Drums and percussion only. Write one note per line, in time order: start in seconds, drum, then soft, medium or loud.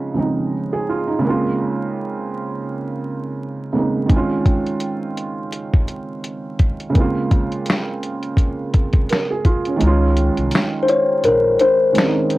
4.09 kick loud
4.09 closed hi-hat medium
4.46 kick medium
4.46 closed hi-hat medium
4.67 closed hi-hat soft
4.80 closed hi-hat medium
5.17 closed hi-hat medium
5.53 closed hi-hat medium
5.74 kick medium
5.88 closed hi-hat medium
6.24 closed hi-hat medium
6.59 kick medium
6.59 closed hi-hat soft
6.80 closed hi-hat soft
6.95 kick medium
6.95 closed hi-hat medium
7.31 kick medium
7.31 closed hi-hat medium
7.52 closed hi-hat soft
7.66 finger snap medium
7.66 closed hi-hat medium
7.70 snare loud
8.03 closed hi-hat medium
8.23 closed hi-hat soft
8.37 kick medium
8.37 closed hi-hat medium
8.74 kick medium
8.74 closed hi-hat medium
8.93 kick medium
8.93 closed hi-hat soft
9.09 finger snap medium
9.09 snare medium
9.09 closed hi-hat medium
9.45 kick medium
9.45 closed hi-hat medium
9.65 closed hi-hat soft
9.81 closed hi-hat medium
10.17 closed hi-hat medium
10.37 closed hi-hat soft
10.51 finger snap medium
10.51 snare loud
10.51 closed hi-hat medium
10.51 tambourine medium
10.89 closed hi-hat medium
11.24 closed hi-hat medium
11.60 closed hi-hat medium
11.95 finger snap medium
11.95 snare loud
11.95 closed hi-hat medium
11.95 tambourine medium
12.30 closed hi-hat medium